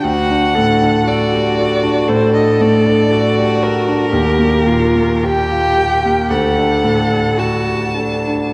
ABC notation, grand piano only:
X:1
M:4/4
L:1/16
Q:1/4=58
K:Dphr
V:1 name="Grand piano"
D,, D A,, D A G A D A,, D A,, D A G A D | E,, B, B,, B, G F G B, D,, D A,, D A G A D |]